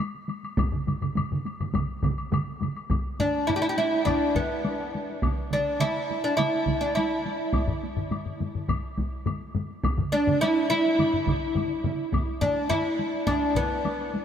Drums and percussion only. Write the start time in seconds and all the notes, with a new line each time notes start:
0.00 taiko high, high woodblock
0.14 taiko high
0.29 taiko high, high woodblock
0.43 taiko high, high woodblock
0.57 taiko, taiko low-mid, taiko mid, taiko high, high woodblock
0.72 taiko low-mid, taiko mid, taiko high
0.87 taiko low-mid, taiko mid, taiko high, high woodblock
1.02 taiko low-mid, taiko mid, high woodblock
1.16 taiko low-mid, taiko mid, taiko high, high woodblock
1.31 taiko low-mid, taiko mid, taiko high
1.45 taiko high, high woodblock
1.60 taiko low-mid, taiko mid, taiko high, high woodblock
1.74 taiko, taiko low-mid, taiko mid, taiko high, high woodblock
1.88 taiko high
2.02 taiko, taiko low-mid, taiko mid, taiko high, high woodblock
2.17 taiko high, high woodblock
2.32 taiko low-mid, taiko mid, taiko high, high woodblock
2.46 taiko high
2.61 taiko low-mid, taiko mid, taiko high, high woodblock
2.75 taiko high, high woodblock
2.90 taiko, taiko low-mid, taiko high, high woodblock
3.05 taiko high
3.20 taiko low-mid, taiko high
3.34 taiko high
3.49 taiko low-mid, taiko high, high woodblock
3.64 taiko high
3.78 taiko high
3.93 taiko high
4.06 taiko, taiko low-mid, taiko high, high woodblock
4.21 taiko high
4.35 taiko, taiko low-mid, taiko high
4.65 taiko high, high woodblock
4.80 taiko high
4.95 taiko high
5.09 taiko high
5.22 taiko, taiko mid, taiko high, high woodblock
5.38 taiko high
5.51 taiko mid, taiko high
5.80 taiko mid, taiko high, high woodblock
5.97 taiko high
6.10 taiko high
6.25 taiko high
6.37 taiko mid, taiko high, high woodblock
6.55 taiko high
6.66 taiko, taiko mid, taiko high
6.96 taiko high, high woodblock
7.26 taiko high
7.40 taiko high
7.53 taiko, taiko high, high woodblock
7.68 taiko low-mid, taiko high
7.83 taiko high
7.97 taiko low-mid, taiko high
8.11 taiko low-mid, taiko high, high woodblock
8.26 taiko low-mid, taiko high
8.40 taiko low-mid, taiko high
8.54 taiko low-mid, taiko high
8.68 taiko, taiko low-mid, taiko high, high woodblock
8.83 taiko high
8.98 taiko, taiko high
9.26 taiko low-mid, taiko high, high woodblock
9.40 taiko high
9.55 taiko low-mid, taiko high
9.70 taiko high
9.84 taiko, taiko high, high woodblock
9.98 taiko low-mid, taiko mid
10.13 taiko high
10.27 taiko low-mid, taiko mid, taiko high
10.42 taiko high, high woodblock
10.56 taiko high
10.71 taiko high
10.86 taiko high
10.99 taiko low-mid, taiko mid, taiko high, high woodblock
11.13 taiko low-mid, taiko mid
11.26 taiko, taiko low-mid, taiko mid, taiko high, high woodblock
11.55 taiko low-mid, taiko mid, taiko high, high woodblock
11.71 taiko high
11.84 taiko low-mid, taiko mid, taiko high
12.00 taiko high
12.12 taiko, taiko low-mid, taiko high, high woodblock
12.28 taiko high
12.41 taiko low-mid, taiko high
12.57 taiko high
12.70 taiko low-mid, taiko high, high woodblock
12.85 taiko high
12.99 taiko high
13.13 taiko high
13.27 taiko, taiko low-mid, taiko high, high woodblock
13.55 taiko, taiko low-mid, taiko high
13.85 taiko high, high woodblock
13.99 taiko high
14.14 taiko high